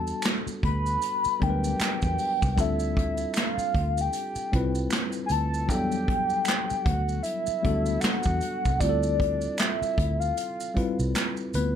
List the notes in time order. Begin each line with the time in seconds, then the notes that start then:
Already playing: E2 G3 B3 D4 F#4 A4 A5
0.07 maracas
0.22 finger snap, snare, clap, closed hi-hat, maracas
0.47 muted fingered electric bass stroke, maracas
0.63 D2 B5, kick, closed hi-hat
0.86 maracas
1.02 closed hi-hat, maracas
1.24 muted fingered electric bass stroke, maracas
1.40 D2 F#3 G3 B3 D4 A#4 G5, kick, closed hi-hat
1.50 B4
1.64 maracas
1.80 finger snap, muted fingered electric bass stroke, snare, clap, closed hi-hat, maracas
2.02 E2, kick, maracas
2.19 open hi-hat, maracas
2.42 C2, kick, maracas
2.56 D2 G3 C4 D4 F4 A4, kick, closed hi-hat, maracas
2.60 E5
2.80 maracas
2.97 kick, closed hi-hat
3.18 maracas
3.34 finger snap, snare, closed hi-hat, maracas
3.38 F5, clap
3.58 muted fingered electric bass stroke, maracas
3.75 D2, kick, closed hi-hat
3.98 G5, maracas
4.13 closed hi-hat, maracas
4.36 muted fingered electric bass stroke, maracas
4.52 C2 G3 C4 E4 F4, kick, closed hi-hat
4.56 B4
4.75 maracas
4.90 finger snap, snare, clap, closed hi-hat, maracas
5.12 maracas
5.26 G#5, maracas
5.30 D2 A5, closed hi-hat
5.54 maracas
5.68 E2 F#3 B3 D4 A4 G5, kick, closed hi-hat, maracas
5.75 G3
5.92 maracas
6.08 kick, closed hi-hat
6.30 maracas
6.45 finger snap, snare, closed hi-hat, maracas
6.49 clap
6.70 muted fingered electric bass stroke, maracas
6.85 D2 F#5, kick, closed hi-hat
7.09 maracas
7.23 E5, closed hi-hat, maracas
7.47 muted fingered electric bass stroke, maracas
7.62 D2 G3 B3 D4 F#4 A4, kick, closed hi-hat
7.86 maracas
8.00 F#5, finger snap, muted fingered electric bass stroke, snare, closed hi-hat, maracas
8.05 clap
8.23 E2, kick, maracas
8.41 closed hi-hat, maracas
8.65 C2, kick, maracas
8.79 D2 G3 C4 E4 F4 G4 D5, kick, closed hi-hat, maracas
8.89 A4
9.03 maracas
9.20 kick, closed hi-hat
9.41 maracas
9.58 E5, finger snap, snare, clap, closed hi-hat, maracas
9.82 muted fingered electric bass stroke, maracas
9.98 D2, kick, closed hi-hat
10.20 F5, maracas
10.37 closed hi-hat, maracas
10.60 maracas
10.74 G3 C4 E4 F4 B4, muted fingered electric bass stroke, kick, closed hi-hat
10.99 C2, maracas
11.15 finger snap, snare, clap, closed hi-hat, maracas
11.37 maracas
11.54 D2 B3 B4, closed hi-hat, maracas